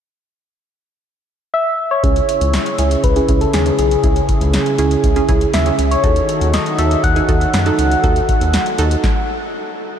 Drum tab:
HH |----------------|xxxxxxxxxxxxxxxx|xxxxxxxxxxxxxxxx|xxxxxxxxxxxxxxxx|
SD |----------------|----o-------o---|----o-------o---|----o-------o---|
BD |----------------|o-------o-o-----|o-o-----o-o-----|o-------o-o-----|

HH |xxxxxxxx--------|
SD |----o---o-------|
BD |o-o-----o-------|